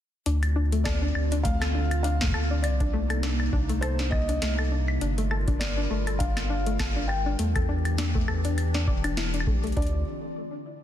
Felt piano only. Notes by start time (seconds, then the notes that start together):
0.84 D5
1.43 F5
2.03 F5
2.62 D5
3.81 C5
4.11 D#5
5.59 D5
6.19 F5
7.08 G5
9.77 D5